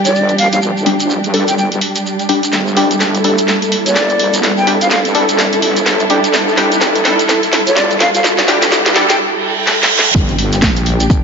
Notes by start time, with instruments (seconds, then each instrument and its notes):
Already playing: string section G3 D4 G4, riser
0.05 wobble bass A#1, flute D5, closed hi-hat, shekere
0.15 wobble bass G1, shekere
0.29 closed hi-hat, shekere
0.38 wobble bass A#1, flute F5, open hi-hat
0.52 flute F5, closed hi-hat, shekere
0.62 shekere
0.77 wobble bass G1, shekere
0.86 synth stab G3 D4 G4, open hi-hat
1.00 closed hi-hat, shekere
1.10 shekere
1.24 wobble bass G2, closed hi-hat, shekere
1.34 synth stab G3 D4 A4, open hi-hat
1.48 wobble bass G1, flute G5, closed hi-hat, shekere
1.58 flute G5, shekere
1.72 closed hi-hat, shekere
1.81 open hi-hat
1.96 closed hi-hat, shekere
2.06 shekere
2.19 closed hi-hat, shekere
2.29 synth stab G3 D4 G4, open hi-hat
2.43 closed hi-hat, shekere
2.52 wobble bass G1, string section E4 A4, snare, shekere
2.67 shekere
2.77 synth stab G3 D4 G4, open hi-hat
2.91 closed hi-hat, shekere
3.00 wobble bass G1, snare, shekere
3.15 closed hi-hat, shekere
3.24 synth stab G3 D4 A4, open hi-hat
3.38 closed hi-hat, shekere
3.48 snare, shekere
3.62 closed hi-hat, shekere
3.72 open hi-hat
3.86 wobble bass A#1, flute D5, closed hi-hat, shekere
3.96 wobble bass G1, snare, shekere
4.10 closed hi-hat, shekere
4.19 wobble bass A#1, open hi-hat
4.34 closed hi-hat, shekere
4.43 snare, shekere
4.57 wobble bass G1, flute G5, shekere
4.67 synth stab G3 D4 G4, open hi-hat
4.81 flute F5, closed hi-hat, shekere
4.91 flute F5, snare, shekere
5.05 wobble bass G2, closed hi-hat, shekere
5.15 synth stab G3 D4 A4, open hi-hat
5.29 wobble bass G1, closed hi-hat, shekere
5.39 snare, shekere
5.52 closed hi-hat, shekere
5.62 wobble bass G1, open hi-hat
5.76 closed hi-hat, shekere
5.86 snare, shekere
5.99 closed hi-hat, shekere
6.10 wobble bass A#1, synth stab G3 D4 G4, open hi-hat
6.24 closed hi-hat, shekere
6.33 wobble bass G1, snare, shekere
6.48 shekere
6.57 synth stab G3 D4 G4, snare, open hi-hat
6.72 closed hi-hat, shekere
6.81 wobble bass G1, snare, shekere
6.95 closed hi-hat, shekere
7.05 synth stab G3 D4 A4, snare, open hi-hat
7.19 closed hi-hat, shekere
7.29 snare, shekere
7.43 closed hi-hat, shekere
7.53 snare, open hi-hat
7.67 wobble bass A#1, flute D5, closed hi-hat, shekere
7.77 wobble bass G1, snare, shekere
7.91 closed hi-hat, shekere
8.00 wobble bass A#1, flute F5, snare, open hi-hat
8.15 flute F5, closed hi-hat, shekere
8.24 snare, shekere
8.38 wobble bass G1, snare, closed hi-hat, shekere
8.48 synth stab G3 D4 G4, snare, open hi-hat
8.62 snare, closed hi-hat, shekere
8.72 snare, shekere
8.86 wobble bass G2, snare, closed hi-hat, shekere
8.96 synth stab G3 D4 A4, snare, open hi-hat
9.09 wobble bass G1, flute G5, snare, closed hi-hat, shekere
9.20 reverse cymbal
9.67 snare
9.83 snare
9.99 snare
10.14 wobble bass G1, string section G3 D4 G4, kick, closed hi-hat, impact, shekere
10.29 closed hi-hat, shekere
10.39 closed hi-hat, open hi-hat
10.52 snare, closed hi-hat, shekere
10.62 wobble bass A#1, kick, snare, closed hi-hat, shekere
10.76 closed hi-hat, shekere
10.86 closed hi-hat, open hi-hat
11.00 closed hi-hat, shekere
11.10 wobble bass G1, kick, closed hi-hat, shekere